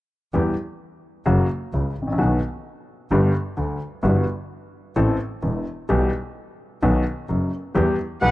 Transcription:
0.33 0.53 E2 medium
0.33 0.53 E3 medium
0.33 0.53 G3 soft
0.33 0.53 B3 soft
0.33 0.53 G4 medium
1.26 1.46 F#1 medium
1.26 1.45 F#2 medium
1.26 1.45 C#3 medium
1.26 1.46 F#3 medium
1.26 1.46 A#3 soft
1.26 1.46 F#4 medium
1.73 1.92 C#2 soft
1.73 1.93 C#2 soft
1.73 1.93 C#3 soft
1.97 2.19 A1 soft
2.02 2.08 G#1 soft
2.07 2.13 A1 soft
2.12 2.18 A#1 medium
2.18 2.38 B1 medium
2.18 2.38 B2 medium
2.18 2.38 D#3 soft
2.18 2.38 F#3 soft
2.18 2.38 B3 soft
2.18 2.38 F#4 medium
3.11 3.31 G1 medium
3.11 3.31 G2 medium
3.11 3.31 D3 medium
3.11 3.31 G3 medium
3.11 3.31 B3 medium
3.11 3.31 G4 medium
3.57 3.77 D2 soft
3.57 3.77 D3 soft
4.03 4.23 G1 medium
4.03 4.23 G2 medium
4.03 4.23 E3 medium
4.03 4.23 G3 soft
4.03 4.23 B3 medium
4.03 4.23 F#4 medium
4.96 5.16 A1 medium
4.96 5.16 A2 medium
4.96 5.16 E3 medium
4.96 5.16 A3 medium
4.96 5.16 C4 medium
4.96 5.16 A4 medium
5.43 5.62 E1 soft
5.43 5.63 E1 soft
5.43 5.62 E2 soft
5.89 6.09 B1 medium
5.89 6.09 B2 medium
5.89 6.09 E3 medium
5.89 6.09 G3 medium
5.89 6.09 B3 soft
5.89 6.09 G4 medium
6.82 7.02 B1 medium
6.82 7.02 B2 medium
6.82 7.02 D#3 medium
6.82 7.02 F#3 soft
6.82 7.02 B3 medium
6.82 7.02 F#4 medium
7.29 7.49 F#1 soft
7.29 7.49 F#2 soft
7.75 7.95 E2 medium
7.75 7.95 E3 medium
7.75 7.95 G3 medium
7.75 7.95 B3 soft
7.75 7.95 G4 medium
8.21 8.31 B1 medium
8.21 8.31 B2 soft
8.21 8.31 E3 soft
8.21 8.31 G3 soft
8.21 8.31 B3 soft
8.21 8.31 G4 soft
8.21 8.31 B4 medium
8.21 8.31 F#5 medium

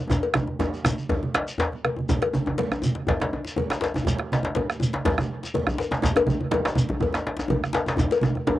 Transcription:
0.10 bombo rim soft
0.10 bombo low medium
0.10 djembe tone loud
0.10 low conga medium
0.10 djembe bass medium
0.10 shekere medium
0.23 cowbell medium
0.23 djembe slap soft
0.34 bombo rim medium
0.34 djembe slap medium
0.34 high conga medium
0.34 djembe tone loud
0.34 shekere soft
0.47 djembe slap soft
0.47 djembe tone medium
0.47 high conga soft
0.59 cowbell soft
0.59 djembe tone medium
0.59 djembe bass medium
0.59 low conga medium
0.59 shekere soft
0.73 high conga soft
0.73 shekere soft
0.84 bombo rim medium
0.84 djembe tone medium
0.84 high conga medium
0.84 djembe tone medium
0.84 shekere medium
0.98 high conga soft
0.98 shekere soft
1.09 bombo low medium
1.09 cowbell soft
1.09 djembe tone loud
1.09 djembe bass medium
1.09 low conga medium
1.23 djembe tone medium
1.23 high conga medium
1.34 bombo rim loud
1.34 djembe slap medium
1.34 djembe slap loud
1.48 djembe slap soft
1.48 shekere soft
1.58 bombo rim soft
1.58 cowbell soft
1.58 djembe slap medium
1.58 djembe tone medium
1.58 djembe bass medium
1.58 low conga soft
1.58 shekere soft
1.72 djembe slap soft
1.72 low conga medium
1.85 bombo rim medium
1.85 cowbell soft
1.85 high conga medium
1.96 djembe tone medium
1.96 high conga medium
2.09 bombo low medium
2.09 djembe tone medium
2.09 djembe bass medium
2.09 low conga medium
2.09 shekere medium
2.22 bombo rim medium
2.22 cowbell medium
2.22 djembe slap medium
2.22 high conga soft
2.33 djembe tone medium
2.33 high conga medium
2.33 shekere soft
2.46 djembe tone medium
2.46 djembe tone loud
2.58 cowbell soft
2.58 djembe slap medium
2.58 low conga medium
2.72 bombo rim medium
2.72 djembe tone medium
2.72 shekere soft
2.82 djembe tone medium
2.82 high conga medium
2.82 shekere medium
2.95 djembe slap medium
3.07 bombo low medium
3.07 cowbell soft
3.07 djembe slap medium
3.07 djembe bass medium
3.07 low conga medium
3.20 bombo rim medium
3.20 djembe slap medium
3.20 djembe tone medium
3.20 high conga medium
3.33 djembe tone medium
3.33 high conga soft
3.45 djembe slap medium
3.45 shekere soft
3.56 cowbell soft
3.56 djembe slap soft
3.56 djembe tone medium
3.56 high conga medium
3.56 low conga medium
3.70 bombo rim medium
3.70 djembe slap medium
3.70 shekere soft
3.81 cowbell soft
3.81 djembe slap medium
3.81 high conga soft
3.81 shekere soft
3.84 djembe slap medium
3.94 djembe tone medium
3.94 high conga medium
3.94 djembe tone medium
3.94 shekere soft
4.05 bombo low medium
4.05 djembe bass medium
4.05 low conga medium
4.05 shekere medium
4.19 bombo rim medium
4.19 djembe slap medium
4.19 high conga soft
4.32 djembe slap medium
4.32 high conga medium
4.32 shekere soft
4.43 djembe slap medium
4.43 djembe tone medium
4.55 cowbell soft
4.55 djembe slap medium
4.55 djembe tone medium
4.55 low conga medium
4.70 bombo rim medium
4.70 shekere soft
4.80 djembe tone medium
4.80 high conga medium
4.80 shekere medium
4.93 djembe slap medium
5.05 bombo low medium
5.05 cowbell soft
5.05 djembe slap medium
5.05 djembe bass medium
5.05 low conga medium
5.18 bombo rim medium
5.18 djembe tone medium
5.18 high conga medium
5.18 shekere soft
5.31 high conga soft
5.43 djembe slap medium
5.43 shekere soft
5.54 cowbell medium
5.54 djembe slap soft
5.54 djembe tone medium
5.54 high conga medium
5.54 low conga medium
5.67 bombo rim medium
5.67 djembe bass loud
5.67 shekere soft
5.78 cowbell soft
5.78 djembe slap medium
5.78 high conga soft
5.78 shekere soft
5.91 djembe slap medium
5.91 djembe tone medium
5.91 high conga medium
5.91 shekere soft
6.02 bombo low loud
6.02 djembe slap medium
6.02 low conga medium
6.02 djembe bass medium
6.02 shekere medium
6.16 bombo rim medium
6.16 cowbell medium
6.16 djembe slap medium
6.16 high conga soft
6.16 djembe tone medium
6.27 high conga medium
6.27 djembe bass medium
6.27 shekere soft
6.40 djembe tone medium
6.51 cowbell medium
6.51 djembe slap medium
6.51 low conga medium
6.65 bombo rim medium
6.65 djembe slap medium
6.65 shekere soft
6.75 djembe tone medium
6.75 high conga medium
6.75 djembe tone medium
6.75 shekere medium
6.89 djembe slap medium
6.89 djembe bass medium
7.00 bombo low medium
7.00 cowbell medium
7.00 djembe bass medium
7.00 low conga medium
7.13 bombo rim medium
7.13 djembe slap medium
7.13 djembe tone medium
7.13 shekere soft
7.26 djembe slap medium
7.26 high conga soft
7.37 djembe slap medium
7.37 djembe tone medium
7.37 shekere soft
7.48 cowbell medium
7.48 djembe slap soft
7.48 djembe tone medium
7.48 high conga medium
7.48 djembe bass medium
7.48 low conga medium
7.64 bombo rim medium
7.64 shekere soft
7.73 cowbell medium
7.73 djembe slap medium
7.73 high conga soft
7.73 shekere soft
7.86 djembe slap medium
7.86 djembe tone medium
7.86 high conga medium
7.86 shekere soft
7.97 bombo rim soft
7.97 bombo low medium
7.97 djembe tone medium
7.97 djembe bass medium
7.97 low conga medium
7.97 shekere soft
8.11 cowbell medium
8.11 djembe slap medium
8.11 shekere soft
8.21 djembe slap soft
8.21 high conga medium
8.21 djembe tone medium
8.21 shekere soft
8.35 bombo rim soft
8.35 djembe slap soft
8.35 djembe tone medium
8.35 high conga soft
8.47 bombo rim soft
8.47 cowbell soft
8.47 djembe slap medium
8.47 high conga soft
8.47 djembe tone loud
8.47 low conga medium

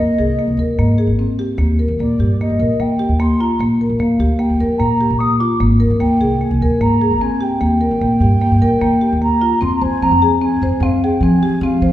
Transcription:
0.00 0.15 D#2 medium
0.00 0.15 A#3 medium
0.00 1.00 D#5 medium
0.18 0.35 C2 medium
0.18 0.35 G#4 medium
0.39 0.55 A#3 medium
0.48 0.56 C2 medium
0.57 0.66 D#2 medium
0.57 0.76 A#4 medium
0.78 1.04 G#2 medium
0.78 0.95 A#3 medium
0.98 1.15 G#4 medium
1.07 1.24 G#1 medium
1.19 1.36 C4 medium
1.39 1.56 G4 medium
1.58 1.83 D#2 medium
1.58 1.75 A#3 medium
1.79 1.96 A#4 medium
1.88 1.97 D#2 medium
1.99 2.16 A#1 medium
1.99 2.17 A#3 medium
1.99 2.37 D5 medium
2.19 2.36 G2 medium
2.19 2.36 G4 medium
2.41 2.57 A#3 medium
2.41 2.82 D#5 medium
2.50 2.58 G2 medium
2.59 2.68 A#1 medium
2.59 2.76 A#4 medium
2.80 3.05 D#3 medium
2.80 2.96 A#3 medium
2.80 3.21 G5 medium
2.99 3.16 G4 medium
3.09 3.26 D#2 medium
3.19 3.37 A#3 medium
3.19 3.41 C6 medium
3.40 3.57 F4 medium
3.40 3.60 A#5 medium
3.59 3.85 A#1 medium
3.59 3.77 A#3 medium
3.81 3.97 A#4 medium
3.90 3.98 A#1 medium
3.99 4.16 F2 medium
3.99 4.17 A#3 medium
3.99 4.40 F5 medium
4.19 4.36 D2 medium
4.19 4.37 G4 medium
4.39 4.56 A#3 medium
4.39 4.79 G5 medium
4.50 4.58 D2 medium
4.60 4.68 F2 medium
4.60 4.77 A#4 medium
4.78 5.05 A#2 medium
4.78 4.97 A#3 medium
4.78 5.20 A#5 medium
5.01 5.17 G4 medium
5.10 5.27 A#1 medium
5.18 5.37 A#3 medium
5.18 5.38 D#6 medium
5.38 5.57 F4 medium
5.38 5.58 D6 medium
5.60 5.85 G#1 medium
5.60 5.77 A#3 medium
5.80 5.97 A#4 medium
5.90 5.99 G#1 medium
5.99 6.17 D#2 medium
5.99 6.17 A#3 medium
5.99 6.43 G5 medium
6.21 6.38 C2 medium
6.21 6.37 G#4 medium
6.41 6.58 A#3 medium
6.41 6.83 G#5 medium
6.51 6.59 C2 medium
6.61 6.70 D#2 medium
6.61 6.78 A#4 medium
6.81 7.06 G#2 medium
6.81 6.98 A#3 medium
6.81 7.23 A#5 medium
7.01 7.18 G#4 medium
7.11 7.28 G#1 medium
7.21 7.38 C4 medium
7.21 7.43 G#5 medium
7.41 7.57 G4 medium
7.41 9.22 G5 medium
7.61 7.86 D#2 medium
7.61 7.78 A#3 medium
7.81 7.98 A#4 medium
7.91 7.99 D#2 medium
8.01 8.18 A#1 medium
8.01 8.18 A#3 medium
8.20 8.37 G2 medium
8.20 8.38 G4 medium
8.42 8.58 A#3 medium
8.51 8.60 G2 medium
8.62 8.70 A#1 medium
8.62 8.78 A#4 medium
8.81 9.06 D#3 medium
8.81 8.98 A#3 medium
9.01 9.18 G4 medium
9.12 9.29 D#2 medium
9.22 9.38 A#3 medium
9.22 9.59 A#5 medium
9.41 9.58 F4 medium
9.61 9.70 F2 medium
9.61 9.78 C4 medium
9.61 9.75 C6 medium
9.76 9.83 A#5 medium
9.82 9.90 F2 medium
9.82 9.98 C5 medium
9.82 10.04 G#5 medium
10.02 10.10 F3 medium
10.02 10.19 C4 medium
10.02 10.24 A#5 medium
10.11 10.53 F2 medium
10.22 10.39 G#4 medium
10.22 10.41 G#5 medium
10.42 10.58 C4 medium
10.42 10.83 G#5 medium
10.62 10.70 F2 medium
10.62 10.79 C5 medium
10.80 10.98 F2 medium
10.80 10.99 C4 medium
10.80 11.05 F5 medium
11.03 11.20 G#4 medium
11.03 11.24 G5 medium
11.21 11.38 F3 medium
11.21 11.39 C4 medium
11.21 11.62 G#5 medium
11.43 11.59 G4 medium
11.61 11.78 F3 loud
11.61 11.79 C4 medium
11.61 11.92 F5 medium
11.82 11.92 F3 medium
11.82 11.92 C5 medium

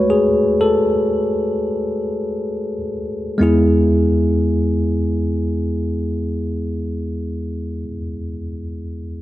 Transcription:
0.00 0.28 G#3 soft
0.00 0.28 A3 soft
0.00 0.29 F#4 soft
0.00 3.42 B4 medium
0.00 3.42 C#5 medium
0.10 0.58 G#4 medium
0.61 2.77 A4 medium
3.38 7.86 E2 medium
3.38 7.83 G#3 medium
3.38 7.85 B3 medium
3.38 7.87 E4 medium
3.43 7.88 G#4 medium

